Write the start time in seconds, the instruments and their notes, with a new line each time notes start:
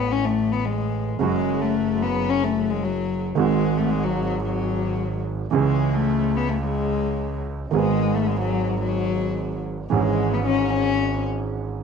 Already playing: double bass A1, grand piano A1 A2 E3 B3 B4, cello B3
0.11 cello C#4
0.25 cello A3
0.52 cello B3
0.65 cello G#3
1.19 double bass F#1, grand piano F#2 C#3 F#3 C#4, cello G#3
1.23 grand piano F#4
1.61 cello A3
2.02 cello B3
2.29 cello C#4
2.43 cello A3
2.70 cello G#3
2.83 cello F#3
3.35 double bass G#1, grand piano G#1 G#2 D#3 G#3 C4, cello G#3
3.39 grand piano F#4
3.77 cello A3
3.90 cello G#3
4.04 cello F#3
4.44 cello F#3
5.51 double bass C#2, grand piano C#2 C#3 E3 C#4 G#4, cello G#3
5.94 cello A3
6.36 cello B3
6.49 cello A3
6.62 cello G#3
7.71 double bass G#1, grand piano G#1 G#2 D#3 G#3 B3 G#4, cello G#3
8.15 cello A3
8.27 cello G#3
8.41 cello F#3
8.82 cello F#3
9.90 grand piano G#1 G#2 E3 G#3 C#4 G#4, double bass G#1, cello G#3
10.33 cello B3
10.46 cello C#4
10.73 cello C#4